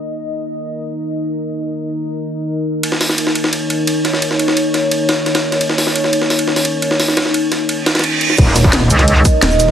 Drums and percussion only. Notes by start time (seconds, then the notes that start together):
2.83 ride
2.92 snare
3.01 snare, open hi-hat
3.09 snare
3.18 ride
3.27 snare
3.35 ride
3.44 snare
3.53 ride
3.70 ride
3.87 ride
4.05 snare, ride
4.13 snare
4.22 ride
4.31 snare
4.39 ride
4.48 snare
4.57 ride
4.74 snare, ride
4.91 ride
5.09 snare, ride
5.26 snare, ride
5.35 snare, ride
5.52 snare, ride
5.61 ride
5.70 snare
5.78 snare, open hi-hat
5.87 snare
5.96 ride
6.04 snare
6.13 ride
6.22 snare
6.30 snare, open hi-hat
6.39 ride
6.48 snare
6.56 snare, open hi-hat
6.65 ride
6.82 ride
6.91 snare
7.00 snare, open hi-hat
7.08 snare
7.17 snare, ride
7.26 snare
7.34 ride
7.52 snare, ride
7.69 ride
7.86 snare, ride
7.95 snare, ride
7.99 snare, ride
8.04 ride
8.21 ride
8.30 snare
8.38 kick, closed hi-hat, ride, crash
8.47 snare
8.56 snare, closed hi-hat, open hi-hat, shaker
8.64 kick, snare
8.73 snare, closed hi-hat, ride
8.82 snare
8.90 closed hi-hat, ride, shaker
8.99 snare, closed hi-hat
9.08 closed hi-hat, ride
9.25 kick, closed hi-hat, ride, shaker
9.42 snare, closed hi-hat, ride
9.51 shaker
9.60 snare, closed hi-hat, ride, shaker